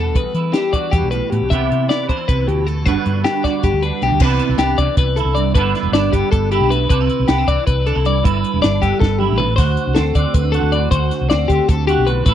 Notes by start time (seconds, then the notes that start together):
Already playing: E2 B2 E3 G3 D4 F#4 A4
0.15 B1 E2 B4, kick, closed hi-hat
0.34 E3 E4, closed hi-hat
0.53 D4 G4, snare, closed hi-hat
0.73 E3 F#4 D5, kick, closed hi-hat
0.91 E2 G2 G4, kick, closed hi-hat
1.03 B1
1.11 A2 B4, closed hi-hat
1.30 A2 B2 G4, closed hi-hat
1.41 B1
1.50 C2 C3 E3 B3 E4 G4 E5, kick, closed hi-hat
1.70 C3 G4, closed hi-hat
1.89 E4 D5, snare, closed hi-hat
2.08 E3 D4 C5, kick, closed hi-hat
2.17 E4
2.28 C2 C3 B4, kick, closed hi-hat
2.47 D2 B2 G4, closed hi-hat
2.66 A2 A4, closed hi-hat
2.85 G1 G2 D3 B3 D4 F#4 B4, kick, closed hi-hat
3.06 G2 F#4, closed hi-hat
3.24 D4 G4, snare, closed hi-hat
3.44 D3 F#4 D5, kick, snare, closed hi-hat
3.63 G1 G4, kick, closed hi-hat
3.73 D2
3.83 D4 B4, closed hi-hat
4.01 B1 D2 G4, closed hi-hat
4.11 D2
4.20 C2 C3 E3 B3 D4 B4, kick, crash
4.25 E4
4.40 closed hi-hat
4.49 B1
4.58 C2 D4 G4, snare, closed hi-hat
4.78 C2 E3 D5, kick, closed hi-hat
4.97 C2 B4, kick, closed hi-hat
5.16 E4 A4, closed hi-hat
5.25 C2
5.35 G2 D5, closed hi-hat
5.54 G1 G2 D3 B3 D4 E4 B4, kick, closed hi-hat
5.75 snare, closed hi-hat
5.83 E1
5.92 G1 D4 D5, snare, closed hi-hat
6.12 G1 D3 G4, kick, closed hi-hat
6.32 G1 A4, kick, closed hi-hat
6.52 E4 G4, closed hi-hat
6.61 B1
6.70 D2 B4, closed hi-hat
6.90 C2 C3 D4 B4, kick, closed hi-hat
7.01 E4
7.09 closed hi-hat
7.20 B1
7.28 C2 B3 G4, snare, closed hi-hat
7.38 D4
7.48 C2 E3 D5, kick, closed hi-hat
7.67 C2 B4, kick, closed hi-hat
7.86 D4 A4, closed hi-hat
7.95 C2 E4
8.04 G2 D5, closed hi-hat
8.23 G1 G2 E4 B4, kick, closed hi-hat
8.44 closed hi-hat
8.54 E1
8.62 G1 D4 D5, snare, closed hi-hat
8.82 G1 D3 G4, kick, closed hi-hat
9.00 G1 A4, kick, snare
9.19 E4 G4, mid tom
9.31 A1
9.38 D2 B4, floor tom
9.56 D2 F#4 C5, kick, closed hi-hat, splash
9.77 closed hi-hat
9.87 C2
9.95 D2 C4 A4, snare, closed hi-hat
10.15 D2 D3 D5, kick, closed hi-hat
10.34 D2 B4, kick, closed hi-hat
10.52 F#4 A4, closed hi-hat
10.62 D2
10.72 A2 D5, closed hi-hat
10.91 D2 F#4 C5, kick, closed hi-hat
11.11 snare, closed hi-hat
11.21 C2
11.30 D2 C4 D5, snare, closed hi-hat
11.48 D2 D3 G4, kick, closed hi-hat
11.69 D2 A4, kick, closed hi-hat
11.87 F#4 G4, closed hi-hat
11.98 B1
12.07 A2 B4, closed hi-hat
12.26 A1 A2 E4 B4, kick, closed hi-hat